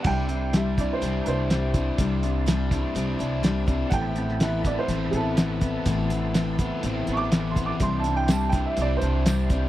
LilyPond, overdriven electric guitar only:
\new Staff \with { instrumentName = "Overdriven electric guitar" } { \time 4/4 \key c \major \tempo 4 = 124 c4 g8 d'8 c'8 d'8 g8 d'8 | c4 g8 d'8 c'8 d'8 g8 d'8 | a,4 e8 b8 c'8 b8 e8 b8 | a,4 e8 b8 c'8 b8 e8 b8 |
c4 g8 d'8 c'8 d'8 g8 d'8 | }